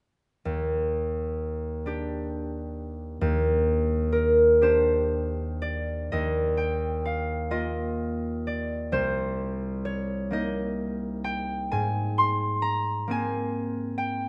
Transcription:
0, 0, Header, 1, 2, 480
1, 0, Start_track
1, 0, Key_signature, -3, "major"
1, 0, Tempo, 920245
1, 237, Time_signature, 6, 3, 24, 8
1, 2153, Tempo, 988468
1, 3113, Tempo, 941915
1, 4553, Tempo, 930233
1, 5993, Tempo, 899550
1, 7362, End_track
2, 0, Start_track
2, 0, Title_t, "Harp"
2, 0, Program_c, 0, 46
2, 236, Note_on_c, 0, 39, 44
2, 969, Note_on_c, 0, 62, 37
2, 975, Note_on_c, 0, 67, 43
2, 1670, Note_off_c, 0, 39, 0
2, 1676, Note_on_c, 0, 39, 57
2, 2151, Note_on_c, 0, 70, 64
2, 2384, Note_off_c, 0, 67, 0
2, 2387, Note_off_c, 0, 62, 0
2, 2389, Note_on_c, 0, 67, 47
2, 2393, Note_on_c, 0, 62, 42
2, 2395, Note_on_c, 0, 72, 59
2, 2877, Note_on_c, 0, 74, 56
2, 3117, Note_off_c, 0, 39, 0
2, 3120, Note_on_c, 0, 75, 62
2, 3124, Note_on_c, 0, 39, 46
2, 3212, Note_off_c, 0, 72, 0
2, 3352, Note_on_c, 0, 79, 55
2, 3597, Note_on_c, 0, 77, 54
2, 3823, Note_off_c, 0, 75, 0
2, 3827, Note_on_c, 0, 65, 38
2, 3829, Note_on_c, 0, 58, 36
2, 3830, Note_on_c, 0, 75, 58
2, 4091, Note_off_c, 0, 70, 0
2, 4312, Note_off_c, 0, 74, 0
2, 4318, Note_on_c, 0, 74, 53
2, 4341, Note_off_c, 0, 67, 0
2, 4345, Note_off_c, 0, 62, 0
2, 4548, Note_on_c, 0, 36, 41
2, 4550, Note_on_c, 0, 72, 66
2, 4570, Note_off_c, 0, 65, 0
2, 4575, Note_off_c, 0, 74, 0
2, 4575, Note_off_c, 0, 77, 0
2, 4577, Note_off_c, 0, 39, 0
2, 5028, Note_on_c, 0, 73, 60
2, 5261, Note_off_c, 0, 58, 0
2, 5263, Note_off_c, 0, 75, 0
2, 5263, Note_on_c, 0, 58, 35
2, 5269, Note_on_c, 0, 63, 43
2, 5276, Note_on_c, 0, 75, 58
2, 5349, Note_off_c, 0, 79, 0
2, 5437, Note_off_c, 0, 73, 0
2, 5747, Note_on_c, 0, 79, 68
2, 5990, Note_on_c, 0, 80, 70
2, 5993, Note_on_c, 0, 44, 47
2, 6011, Note_off_c, 0, 36, 0
2, 6238, Note_on_c, 0, 84, 70
2, 6473, Note_on_c, 0, 82, 79
2, 6582, Note_off_c, 0, 72, 0
2, 6714, Note_off_c, 0, 58, 0
2, 6716, Note_on_c, 0, 58, 40
2, 6720, Note_off_c, 0, 80, 0
2, 6726, Note_on_c, 0, 60, 41
2, 6734, Note_on_c, 0, 80, 80
2, 7191, Note_off_c, 0, 79, 0
2, 7197, Note_on_c, 0, 79, 77
2, 7326, Note_off_c, 0, 63, 0
2, 7332, Note_off_c, 0, 75, 0
2, 7362, Note_off_c, 0, 44, 0
2, 7362, Note_off_c, 0, 58, 0
2, 7362, Note_off_c, 0, 60, 0
2, 7362, Note_off_c, 0, 79, 0
2, 7362, Note_off_c, 0, 80, 0
2, 7362, Note_off_c, 0, 82, 0
2, 7362, Note_off_c, 0, 84, 0
2, 7362, End_track
0, 0, End_of_file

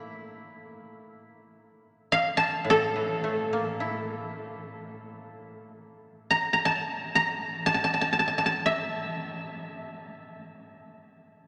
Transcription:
0, 0, Header, 1, 3, 480
1, 0, Start_track
1, 0, Tempo, 500000
1, 11016, End_track
2, 0, Start_track
2, 0, Title_t, "Koto"
2, 0, Program_c, 0, 107
2, 0, Note_on_c, 0, 65, 68
2, 366, Note_off_c, 0, 65, 0
2, 2036, Note_on_c, 0, 77, 89
2, 2277, Note_on_c, 0, 81, 89
2, 2593, Note_on_c, 0, 69, 81
2, 3421, Note_off_c, 0, 77, 0
2, 3482, Note_off_c, 0, 81, 0
2, 4670, Note_off_c, 0, 69, 0
2, 6053, Note_on_c, 0, 82, 79
2, 6267, Note_off_c, 0, 82, 0
2, 6271, Note_on_c, 0, 82, 59
2, 6387, Note_on_c, 0, 81, 80
2, 6445, Note_off_c, 0, 82, 0
2, 6868, Note_on_c, 0, 82, 84
2, 6925, Note_off_c, 0, 81, 0
2, 7355, Note_on_c, 0, 81, 86
2, 7412, Note_off_c, 0, 82, 0
2, 7430, Note_off_c, 0, 81, 0
2, 7433, Note_on_c, 0, 81, 59
2, 7522, Note_off_c, 0, 81, 0
2, 7526, Note_on_c, 0, 81, 68
2, 7615, Note_off_c, 0, 81, 0
2, 7619, Note_on_c, 0, 81, 54
2, 7690, Note_off_c, 0, 81, 0
2, 7693, Note_on_c, 0, 81, 61
2, 7798, Note_off_c, 0, 81, 0
2, 7802, Note_on_c, 0, 81, 51
2, 7861, Note_off_c, 0, 81, 0
2, 7865, Note_on_c, 0, 81, 54
2, 7942, Note_off_c, 0, 81, 0
2, 7946, Note_on_c, 0, 81, 49
2, 8041, Note_off_c, 0, 81, 0
2, 8045, Note_on_c, 0, 81, 66
2, 8116, Note_off_c, 0, 81, 0
2, 8120, Note_on_c, 0, 81, 56
2, 8311, Note_on_c, 0, 76, 70
2, 9325, Note_off_c, 0, 81, 0
2, 11016, Note_off_c, 0, 76, 0
2, 11016, End_track
3, 0, Start_track
3, 0, Title_t, "Koto"
3, 0, Program_c, 1, 107
3, 0, Note_on_c, 1, 45, 54
3, 0, Note_on_c, 1, 52, 40
3, 0, Note_on_c, 1, 57, 47
3, 0, Note_on_c, 1, 58, 40
3, 0, Note_on_c, 1, 64, 43
3, 152, Note_off_c, 1, 52, 0
3, 662, Note_off_c, 1, 45, 0
3, 676, Note_off_c, 1, 57, 0
3, 1209, Note_off_c, 1, 58, 0
3, 1745, Note_off_c, 1, 64, 0
3, 2539, Note_on_c, 1, 45, 57
3, 2838, Note_on_c, 1, 52, 44
3, 3108, Note_on_c, 1, 57, 44
3, 3387, Note_on_c, 1, 58, 40
3, 3650, Note_on_c, 1, 64, 38
3, 5058, Note_off_c, 1, 52, 0
3, 5339, Note_off_c, 1, 57, 0
3, 5621, Note_off_c, 1, 58, 0
3, 5784, Note_off_c, 1, 45, 0
3, 5891, Note_off_c, 1, 64, 0
3, 11016, End_track
0, 0, End_of_file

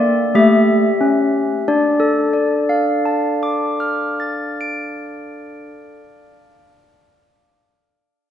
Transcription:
0, 0, Header, 1, 2, 480
1, 0, Start_track
1, 0, Key_signature, -1, "minor"
1, 0, Tempo, 1315789
1, 611, Time_signature, 3, 2, 24, 8
1, 612, Tempo, 1363636
1, 2944, End_track
2, 0, Start_track
2, 0, Title_t, "Handbells"
2, 0, Program_c, 0, 14
2, 0, Note_on_c, 0, 58, 70
2, 0, Note_on_c, 0, 69, 56
2, 0, Note_on_c, 0, 74, 86
2, 83, Note_off_c, 0, 58, 0
2, 112, Note_off_c, 0, 69, 0
2, 119, Note_off_c, 0, 74, 0
2, 127, Note_on_c, 0, 57, 75
2, 128, Note_on_c, 0, 67, 54
2, 129, Note_on_c, 0, 76, 93
2, 318, Note_off_c, 0, 57, 0
2, 368, Note_on_c, 0, 61, 71
2, 563, Note_off_c, 0, 61, 0
2, 597, Note_off_c, 0, 67, 0
2, 598, Note_off_c, 0, 76, 0
2, 613, Note_on_c, 0, 62, 70
2, 613, Note_on_c, 0, 74, 78
2, 724, Note_on_c, 0, 69, 69
2, 839, Note_off_c, 0, 74, 0
2, 843, Note_on_c, 0, 74, 61
2, 970, Note_on_c, 0, 77, 66
2, 1097, Note_on_c, 0, 81, 62
2, 1228, Note_on_c, 0, 86, 56
2, 1359, Note_on_c, 0, 89, 53
2, 1499, Note_on_c, 0, 93, 54
2, 1643, Note_on_c, 0, 98, 55
2, 2023, Note_off_c, 0, 62, 0
2, 2134, Note_off_c, 0, 69, 0
2, 2253, Note_off_c, 0, 74, 0
2, 2380, Note_off_c, 0, 77, 0
2, 2507, Note_off_c, 0, 81, 0
2, 2561, Note_off_c, 0, 98, 0
2, 2562, Note_off_c, 0, 89, 0
2, 2562, Note_off_c, 0, 93, 0
2, 2565, Note_off_c, 0, 86, 0
2, 2944, End_track
0, 0, End_of_file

